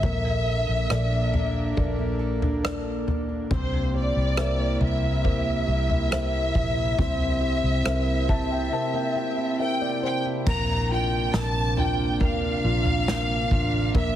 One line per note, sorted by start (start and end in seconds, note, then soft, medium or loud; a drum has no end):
0.00 0.64 A#1 loud
0.00 3.47 A#2 medium
0.00 1.75 A#2 medium
0.00 3.47 A#3 medium
0.00 0.11 C4 soft
0.00 3.47 D4 medium
0.00 0.45 A4 medium
0.00 2.21 E5 loud
0.00 kick medium
0.00 floor tom medium
0.24 1.11 A#3 soft
0.46 0.89 A4 soft
0.68 0.89 A#1 medium
0.68 1.53 D4 soft
0.90 1.73 A#1 medium
0.90 1.32 A4 medium
0.90 1.74 A4 soft
0.90 1.75 A#4 soft
0.90 1.75 D5 medium
0.90 cross-stick medium
1.11 1.98 A#3 soft
1.33 1.76 A4 medium
1.33 floor tom medium
1.55 2.41 D4 soft
1.76 3.47 A#1 medium
1.76 3.59 A#2 medium
1.76 2.61 A4 soft
1.76 2.18 A4 medium
1.76 2.61 A#4 soft
1.76 2.62 D5 soft
1.76 kick medium
1.76 floor tom medium
1.99 2.85 A#3 soft
2.19 2.62 A4 medium
2.42 3.28 D4 soft
2.42 floor tom medium
2.64 3.06 A4 medium
2.64 3.48 A4 soft
2.64 3.48 A#4 soft
2.64 3.48 D5 soft
2.64 cross-stick medium
2.86 3.72 A#3 soft
3.07 3.51 A4 soft
3.07 floor tom medium
3.29 3.59 D4 soft
3.51 4.12 C2 medium
3.51 5.23 C3 medium
3.51 10.43 C3 medium
3.51 6.95 A#3 medium
3.51 6.95 C4 medium
3.51 10.43 E4 medium
3.51 3.92 G4 medium
3.51 3.93 C5 medium
3.51 kick medium
3.51 floor tom medium
3.72 4.59 A#3 soft
3.94 4.37 G4 medium
3.94 4.79 D5 medium
4.16 4.77 C2 medium
4.16 5.01 E4 soft
4.37 4.80 G4 medium
4.37 5.22 A#4 soft
4.37 5.22 C5 soft
4.37 5.23 E5 soft
4.37 cross-stick medium
4.59 5.45 A#3 soft
4.81 5.64 C2 medium
4.81 5.24 G4 medium
4.81 9.61 E5 loud
4.81 floor tom medium
5.03 5.88 E4 soft
5.24 6.96 C3 medium
5.24 5.66 G4 medium
5.24 6.09 A#4 soft
5.24 6.09 C5 soft
5.24 6.09 E5 soft
5.24 kick medium
5.24 floor tom medium
5.45 6.32 A#3 medium
5.67 6.51 C2 medium
5.67 6.09 G4 medium
5.89 6.74 E4 soft
5.89 floor tom soft
6.10 6.53 G4 medium
6.10 6.96 A#4 soft
6.10 6.96 C5 soft
6.10 6.96 E5 soft
6.10 cross-stick medium
6.32 7.19 A#3 soft
6.54 6.96 A#1 medium
6.54 6.97 G4 medium
6.54 kick medium
6.54 floor tom medium
6.75 7.61 E4 soft
6.97 7.60 C2 medium
6.97 8.71 C3 medium
6.97 10.43 C4 medium
6.97 7.40 G4 medium
6.97 kick medium
6.97 floor tom medium
7.19 8.06 A#3 soft
7.41 7.83 G4 medium
7.62 7.84 C2 medium
7.62 8.48 E4 soft
7.84 8.68 C2 medium
7.84 8.27 G4 medium
7.84 8.70 A#4 soft
7.84 8.70 C5 soft
7.84 8.70 E5 medium
7.84 cross-stick loud
8.06 8.93 A#3 soft
8.28 8.71 G4 medium
8.28 8.49 A5 medium
8.28 kick medium
8.50 9.36 E4 soft
8.50 8.71 G5 medium
8.72 10.55 C3 medium
8.72 9.14 G4 medium
8.72 9.57 A#4 soft
8.72 9.57 C5 soft
8.72 9.57 E5 medium
8.72 8.93 A5 medium
8.93 9.81 A#3 medium
8.93 9.15 G5 medium
9.16 9.58 G4 medium
9.16 9.56 G5 medium
9.37 10.24 E4 medium
9.59 10.01 G4 medium
9.59 10.44 A#4 soft
9.59 10.01 C5 soft
9.59 10.44 E5 medium
9.59 10.01 G5 medium
9.81 11.34 A#3 medium
9.81 10.02 D5 medium
10.03 10.55 G4 medium
10.03 10.43 C5 medium
10.03 10.24 G5 medium
10.25 10.55 E4 soft
10.46 11.29 A#1 medium
10.46 14.15 C3 medium
10.46 14.15 A#3 medium
10.46 13.90 A#3 medium
10.46 14.15 D4 medium
10.46 10.88 A#5 loud
10.46 kick loud
10.46 floor tom medium
10.46 crash medium
10.91 11.77 D4 medium
10.91 11.75 F4 medium
10.91 11.34 G5 medium
11.34 12.60 A#1 medium
11.34 14.15 C4 medium
11.34 11.78 A5 loud
11.34 snare loud
11.77 12.63 D4 medium
11.77 12.63 F4 medium
11.77 12.21 G5 medium
11.77 floor tom medium
12.20 13.06 A#4 medium
12.20 13.07 A#4 medium
12.20 13.91 F5 medium
12.20 kick medium
12.20 floor tom medium
12.64 13.47 A#1 medium
12.64 13.50 D4 medium
12.64 13.50 F4 medium
12.85 floor tom medium
13.08 14.15 A#4 soft
13.08 14.15 A#4 medium
13.08 snare loud
13.51 13.91 A1 medium
13.51 14.15 D4 medium
13.51 14.15 F4 medium
13.51 kick medium
13.51 floor tom medium
13.95 14.15 A#1 loud
13.95 14.15 A#2 medium
13.95 14.15 A#3 medium
13.95 14.15 E5 loud
13.95 kick loud
13.95 floor tom loud